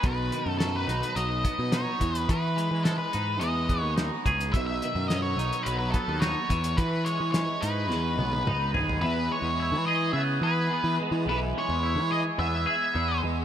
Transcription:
Already playing: B3 D#4
0.03 B1 B2 B4, kick, closed hi-hat
0.32 D#3, closed hi-hat
0.46 F#2
0.58 F#3 A4, snare, closed hi-hat
0.76 B4
0.87 B1 D#4, closed hi-hat
1.03 closed hi-hat
1.15 B1 F#3 D#5, closed hi-hat
1.44 B3, kick, closed hi-hat
1.59 B2
1.72 D#4 C#5, snare, closed hi-hat
2.00 E2 E3, kick, closed hi-hat
2.15 B4, closed hi-hat
2.29 E3 B4, kick, closed hi-hat
2.56 G#3, closed hi-hat
2.71 E3
2.85 G#3 A4, snare, closed hi-hat
2.98 B4
3.13 G#2 D#4, closed hi-hat
3.39 E2 G#3 D#5, closed hi-hat
3.69 B3, kick, closed hi-hat
3.81 D#2 C#5
3.97 D#4, snare, closed hi-hat
4.26 C#2 G#4, kick, closed hi-hat
4.41 closed hi-hat
4.53 B1 B2 E5, kick, closed hi-hat
4.67 E5
4.82 D#3, closed hi-hat
4.95 F#2
5.08 F#3 D#5, snare, closed hi-hat
5.22 C#5
5.37 B1 D#4, closed hi-hat
5.53 closed hi-hat
5.63 B1 F#3 B4, closed hi-hat
5.78 B4
5.91 B3 A4, kick, closed hi-hat
6.08 D#2
6.20 D#4 C#5, snare, closed hi-hat
6.49 E2 E3, kick, closed hi-hat
6.64 closed hi-hat
6.77 E3 B4, kick, closed hi-hat
7.05 G#3 C#5, closed hi-hat
7.20 E3
7.32 G#3 C#5, snare, closed hi-hat
7.62 G#2 D#4 B4, closed hi-hat
7.90 E2 G#3, snare
8.17 B1 B3, high tom
8.33 high tom
8.46 C#2 D#4, mid tom
8.73 D#2 G#4, floor tom
8.89 floor tom
9.01 E2 E3 B4
9.31 G#3 C#5
9.42 E2
9.60 E4
9.72 E3
9.87 G#4 D#5
10.13 C#3 B3 E5
10.41 E3 G#4 B4
10.71 B3
10.84 E3
11.00 G#3
11.12 E3
11.26 B1 E3 B4
11.55 G#3 C#5
11.69 E2
11.83 E4
11.96 E3
12.11 G#4 D#5
12.39 E2 B3 E5
12.66 G#4 E5
12.94 E2 B3
13.22 E2 G#3

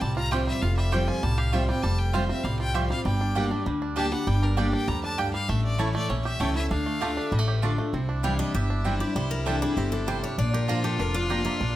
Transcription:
Already playing: C4 F4
0.01 C2 A2 G3 A5
0.16 F4 A#5
0.31 F3 G3 A3 C4 F4 G4 C5 G5
0.47 G3 E5
0.62 F1 F2 F4 F5
0.77 G3 E5
0.92 F3 G3 A3 C4 F4 G4 C5 G5
1.08 F4 G#5
1.23 C2 A2 G3 A5
1.38 G4 F5
1.52 F3 G3 A3 C4 F4 C5 E5 G5
1.68 G3 C4 F4 G5
1.83 F1 F2 G3 A5
1.98 G5
2.13 F3 G3 A3 C4 F4 C5 F5 G5
2.28 C4 F4 E5
2.43 C2 A2 G3 F5
2.59 F4 G5
2.74 F3 G3 A3 C4 F4 G4 C5 E5 G5
2.90 G3 C4 F4 F5
3.05 G1 G2 G3 G5
3.21 D4
3.35 G3 A#3 D4 G4 D5 G5
3.50 D4 G4
3.66 D2 D3 G3
3.82 D4
3.96 G3 A#3 D4 G4 D5 G5 A5
4.11 G3 D4 G4 F#5
4.27 G1 G2 G3 G5
4.42 D4 A#4
4.57 G3 A#3 D4 G4 D5 G5
4.73 D4 G5
4.88 D2 F2 G3 A#5
5.04 D4 A5
5.18 G2 A#3 G4 D5 G5
5.34 G3 F5
5.49 A1 A2 A3 E5
5.64 D5
5.78 E3 A3 C#4 E4 C#5 A5
5.95 A3 D5
6.09 A#1 E2 C#4 C#5
6.25 G4 E5
6.40 C#2 E3 A3 C#4 E4 C#5 G5 A5
6.55 C#4 E4 E5
6.70 D2 D3 D4 F5
6.86 A3
7.01 D3 A3 D4 F4 G4 D5 A5
7.17 D4
7.32 A1 A2 G3
7.39 A3
7.48 G4
7.62 D3 A3 D4 F4 D5 A5
7.78 A3 D4 F4
7.93 C2 C3 C4 E4
8.09 D4
8.23 E3 G3 C4 D4 E4 D5 F5 G5
8.39 D4 D#5
8.54 G1 G2 G4 E5
8.70 D4
8.84 E3 G3 C4 D4 E4 D5 G5
9.00 D4 E4 G4 D5
9.15 C2 C3 G3 C5
9.31 A#4
9.46 E3 G3 C4 D4 E4 A4 D5 G5
9.62 G3 D4 E4 G#4
9.77 G1 D3 C4 G4
9.92 D4 A4
10.07 C3 G3 C4 E4 C5 D5 G5
10.23 D4 C#5
10.38 A#1 A#2 D4 F4 D5
10.54 G4 A#4
10.68 F3 A#3 D4 F4 C5 D5 A#5
10.84 G4 A4
10.99 F1 F2 D4 A#4
11.14 D4 F4
11.29 F3 A#3 D4 F4 G4 D5 A#5
11.45 A#3 E5
11.60 A#1 A#2 D4 D5

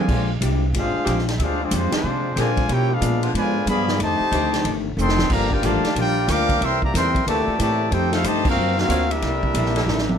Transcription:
Already playing: D3 F3 G#3 F4 C5 D5 G#5
0.08 A#1 A#2 G#3 D4 G4, kick, crash
0.41 C2 A#2 G#3 D4 G4, kick, hi-hat pedal, ride
0.73 G#1 A#2 G#3 D4 F4 G4, kick, ride
0.78 D4 G#4 C5 F5
0.94 muted upright bass stroke
1.03 A#1 D3 G#3 C4 G4, kick, hi-hat pedal, ride
1.08 A#2 G#3 D4 G4
1.18 snare
1.28 snare, ride
1.38 D2 A#2 G#3 D4 F4 E5, kick, ride
1.42 D4 G4 G#4 C5 F5
1.61 F3 G#3 C4 D4 F4 G#4 D5
1.71 F2 A#2 F3 G#3 C4 D4 F4 G4 C5, kick, hi-hat pedal, ride
1.92 D3 F3 G#3 C4 D4 F4 G4 C5, muted upright bass stroke, snare, ride
2.03 A#2 C3 G#3 D4 G4
2.36 A#2 D3 F3 G#3 C4 D4 G4 A#4 C5 D5, kick, snare, hi-hat pedal, ride
2.40 F4 G#5
2.57 kick, ride
2.69 B2 F3 G#3 D4 E4 G4 A#4 C#5 G5, kick, ride
2.92 G#3 D4 F4 G#4 B4 F5
3.00 A#2 B2 F3 G#3 D4, kick, hi-hat pedal, ride
3.23 D3 G#3 B3 F4, ride
3.33 G#2 B2 D3 F3 G#3 D4 F4 B4 D5 G#5, kick, ride
3.66 G2 B2 F3 G#3 B3 D4 G#4 D5 F5 B5, kick, hi-hat pedal, ride
3.88 snare
3.98 F2 C3 D#3 A3 D4 D#4, kick, ride
4.03 G4 C5 D#5 A5
4.20 muted upright bass stroke
4.31 D2 F2 D#3 A3 C4 D4 D#4 G4, kick, hi-hat pedal, ride
4.53 snare, ride
4.64 G1 F2 D#3 A3 D4, kick, ride
4.97 F1 F2 D#3 A3 C4 D4 A4 D#5 G5 C6, hi-hat pedal
5.09 snare
5.19 snare
5.30 G1 G2 D3 F3 A#3 D4 G4 D5 F5 A#5, kick, crash
5.51 A#3 D4 F4 G4 A#4 D5 G5, kick
5.62 A1 G2 A#2 D3 F3 A3 A#3 D4 G4 D5 F5 A5, kick, hi-hat pedal, ride
5.83 muted upright bass stroke, snare, ride
5.95 A#1 G2 F3 A#3 D4 F4 G4 A#4 D5 G5, kick, ride
6.27 D2 G2 F3 A#3 D4 A#4 F5 G5 D6, kick, snare, hi-hat pedal, ride
6.49 kick, ride
6.60 C2 C3 E3 G3 A#3 C4 E4 A4 A#4 E5 G5 C6, kick, ride
6.82 E3 G3 A#3 G4 D5 E5 A#5, kick
6.93 E2 C3 E3 G3 A#3 C4 E4 A4 A#4 E5 G5 C6, kick, snare, hi-hat pedal, ride
7.15 kick, ride
7.25 D2 A#2 C3 E3 A3 A#3 D4 E4 G4 A4 D5 E5 A5, kick, ride
7.47 muted upright bass stroke
7.59 A2 C3 E3 A3 A#3 E4 G4 A4 D5 E5 A5, kick, hi-hat pedal, ride
7.92 F2 D#3 A3 C4 D4 D#4 G4 A4 C5 G5, kick, ride
8.12 G3 A3 C4 D4 D#4 F4 A4 C5 F5, snare, ride
8.24 F2 G2 C3 D#3 A3 D4 G4 C5 D#5 A5, kick, hi-hat pedal, ride
8.45 F3 A#3 C4 F#4 A#4 F5, kick, crash
8.57 F#2 D3 A#3 C4 F#4
8.76 A#3 C4 F#4 A#4 F5, snare
8.88 D2 D3 F#3 A#3 C4 D4 F4 F#4, kick, hi-hat pedal, ride
9.10 G3 A#3 D4 E4 G4 A#4 E5, ride
9.22 C2 C3 A#3 E4 A4, kick, snare, ride
9.43 kick
9.54 A#1 C3 A#3 E4 A4, kick, hi-hat pedal, ride
9.66 snare
9.75 E3 A#3 D4 A4, snare, ride
9.86 A1 C3 A#3 E4 A4, snare
9.98 snare
10.09 high tom

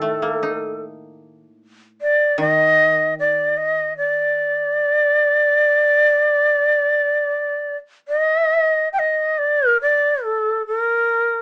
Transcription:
Already playing: A2 D#3 A4
0.02 A3
0.22 A#3
0.43 D#4
2.02 D5
2.38 D#3 D#5
3.20 D5
3.57 D#5
3.97 D5
8.08 D#5
8.93 G5
8.99 D#5
9.38 D5
9.69 A#4
9.82 D5
10.25 A4
10.67 A#4

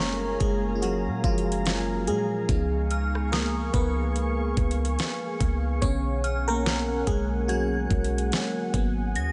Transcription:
Already playing: F#1 G#3 A#3 C#4 F4 G#4 A#4 C#5 F5 G#5 A#5
0.00 C#6
0.40 F#1 G#3 G#4, kick, closed hi-hat
0.75 F4
0.82 F#3 F#4, closed hi-hat
1.07 A#2
1.24 F#1 F3 F4, kick, closed hi-hat
1.38 closed hi-hat
1.52 closed hi-hat
1.66 snare, closed hi-hat
2.07 A#2 G#3 G#4, closed hi-hat
2.49 C#2 F3 B3 D#4 G#5 C#6, kick, closed hi-hat
2.91 F6, closed hi-hat
3.15 cross-stick
3.32 A#3 A#4 D#6, snare
3.73 C#2 B3 B4, kick, closed hi-hat
4.16 closed hi-hat
4.57 C#2, kick, closed hi-hat
4.71 closed hi-hat
4.85 closed hi-hat
4.99 snare, closed hi-hat
5.41 C#2, kick, closed hi-hat
5.82 B1 D3 B3 C#4 C#5 F#5, kick, closed hi-hat
6.24 F6, closed hi-hat
6.48 A#3 A#4, cross-stick
6.66 snare
7.07 B1 G#3 G#4, kick, closed hi-hat
7.48 F#3 F#4 G#6, closed hi-hat
7.91 B1, kick, closed hi-hat
8.04 closed hi-hat
8.18 closed hi-hat
8.32 snare, closed hi-hat
8.74 G#1 F#3 A#3 B3 G#4 D#6, kick, closed hi-hat
9.15 D#2 A#6, closed hi-hat

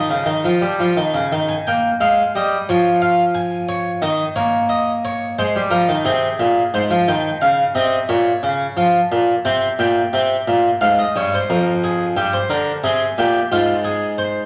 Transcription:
Already playing: D#5
0.10 C#3
0.26 D#3
0.44 F3
0.61 G3
0.80 F3
0.97 D#3
1.14 C#3
1.32 D#3
1.49 G#5
1.67 A#3 G5
2.01 G#3 F5
2.35 G3 D#5
2.69 F3 C#5
3.02 F5
3.35 G#5
3.69 C#5
4.02 D#3 D#5
4.36 A#3 C#5
4.69 D#5
5.05 C#5
5.39 G#3 C5
5.56 G3
5.70 F3 A#4
5.89 D#3
6.05 C3 G#4
6.39 A#2
6.74 G#2 C5
6.90 F3
7.08 D#3 G5
7.42 C#3 F5
7.75 C3 D#5
8.09 A#2 C#5
8.43 C#3
8.77 F3
9.12 A#2
9.45 C3 C5
9.79 A#2 G5
10.13 C3
10.48 A#2
10.81 G#2 F5
10.99 D#5
11.16 G2 C#5
11.34 C5
11.50 F2 A#4
11.84 G#4
12.17 G2 G4
12.33 C5
12.50 D3 A#4
12.84 C3 G#4
13.18 A#2 G4
13.52 G#2 F4
13.84 G#4
14.18 C5

